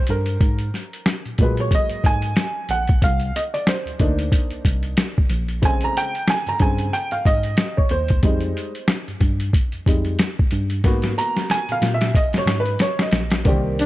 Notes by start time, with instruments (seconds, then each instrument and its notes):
Already playing: upright piano C5
0.07 tine electric piano G2, upright piano A#4, closed hi-hat
0.26 closed hi-hat
0.40 tine electric piano G#2, kick, closed hi-hat
0.59 closed hi-hat
0.74 snare, closed hi-hat
0.93 closed hi-hat
1.06 snare, closed hi-hat
1.25 tine electric piano A#2, closed hi-hat
1.38 tine electric piano A#2, upright piano F#3 G#3 A#3, kick, closed hi-hat
1.43 upright piano B4
1.57 upright piano C#5, closed hi-hat
1.71 upright piano D#5, kick, closed hi-hat
1.90 tine electric piano G#2, closed hi-hat
2.04 tine electric piano G#2, upright piano G#5, kick, closed hi-hat
2.22 closed hi-hat
2.36 snare, closed hi-hat
2.69 tine electric piano A#1, upright piano F#5, closed hi-hat
2.87 kick, closed hi-hat
3.02 tine electric piano C2, upright piano F5, kick, closed hi-hat
3.20 closed hi-hat
3.36 upright piano D#5, closed hi-hat
3.54 upright piano D5, closed hi-hat
3.67 upright piano C5, snare, closed hi-hat
3.86 tine electric piano D2, closed hi-hat
3.99 tine electric piano D2, upright piano A#3 D4 D#4, kick, closed hi-hat
4.19 closed hi-hat
4.32 kick, closed hi-hat
4.51 tine electric piano C2, closed hi-hat
4.65 tine electric piano C2, kick, closed hi-hat
4.83 closed hi-hat
4.97 snare, closed hi-hat
5.18 kick
5.30 tine electric piano A#1, closed hi-hat
5.48 closed hi-hat
5.62 upright piano C#3 G#3 C4 G#5, kick, closed hi-hat
5.81 upright piano A#5, closed hi-hat
5.97 upright piano G5, closed hi-hat
6.15 closed hi-hat
6.28 upright piano G#5, snare, closed hi-hat
6.47 tine electric piano G2, upright piano A#5, closed hi-hat
6.59 tine electric piano G2, upright piano C#3 C4 G#4 G#5, kick, closed hi-hat
6.78 closed hi-hat
6.93 upright piano G5, closed hi-hat
7.11 tine electric piano G#2, upright piano F5, closed hi-hat
7.25 tine electric piano G#2, upright piano D#5, kick, closed hi-hat
7.43 closed hi-hat
7.57 snare, closed hi-hat
7.77 upright piano C#5, kick
7.89 tine electric piano D#2, upright piano C5, closed hi-hat
8.08 kick, closed hi-hat
8.23 tine electric piano F2, upright piano G3 G#3 D#4, kick, closed hi-hat
8.40 closed hi-hat
8.57 closed hi-hat
8.75 closed hi-hat
8.88 snare, closed hi-hat
9.08 tine electric piano G2, closed hi-hat
9.21 tine electric piano G2, kick, closed hi-hat
9.40 closed hi-hat
9.53 kick, closed hi-hat
9.72 tine electric piano F2, closed hi-hat
9.86 tine electric piano F2, upright piano G3 G#3 D#4, kick, closed hi-hat
10.05 closed hi-hat
10.19 snare, closed hi-hat
10.39 kick
10.51 tine electric piano G2, closed hi-hat
10.70 closed hi-hat
10.84 tine electric piano G#2, upright piano A#3 B3 F#4, kick, snare, closed hi-hat
11.02 snare, closed hi-hat
11.18 upright piano A#5, closed hi-hat
11.37 snare, closed hi-hat
11.50 upright piano G#5, snare, closed hi-hat
11.69 tine electric piano A#2, upright piano F5, closed hi-hat
11.82 tine electric piano A#2, snare, closed hi-hat
11.94 upright piano E5
12.01 snare, closed hi-hat
12.14 upright piano D#5, kick, closed hi-hat
12.33 tine electric piano G#2, snare, closed hi-hat
12.38 upright piano C#5
12.46 tine electric piano G#2, snare, closed hi-hat
12.60 upright piano B4
12.66 closed hi-hat
12.79 upright piano C#5, snare, closed hi-hat
12.99 upright piano D#5, snare
13.11 tine electric piano A#1, snare, closed hi-hat
13.30 snare, closed hi-hat
13.44 tine electric piano C2, upright piano D3 A#3 C4 G4 D5, kick, closed hi-hat
13.51 upright piano D#3
13.79 flugelhorn D4, closed hi-hat